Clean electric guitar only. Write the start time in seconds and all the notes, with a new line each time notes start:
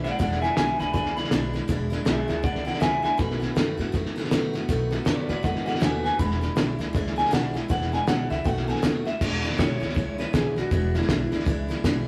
0.04 D5 F#5
0.20 D5 F#5
0.41 E5 G#5
0.56 E5 G#5
0.79 G#5 B5
0.93 G#5 B5
1.17 B5
2.05 G#4 E5
2.29 G#4 E5
2.43 D5 F#5
2.66 D5 F#5
2.81 E5 G#5
3.03 E5 G#5
3.18 B5
5.06 B4 D5
5.30 B4 D5
5.44 D#5 F#5
5.66 D#5 F#5
5.81 B4 G#5
6.04 B4 G#5
6.19 B5
7.18 G#5
7.32 F#5
7.56 E5
7.71 F#5
7.93 G#5
8.08 F#5
8.30 E5
8.46 F#5
8.68 G#5
8.84 F#5
9.07 E5
9.59 C#5
10.20 B4
10.35 G#4
10.58 F#4
10.72 F#4
10.95 E4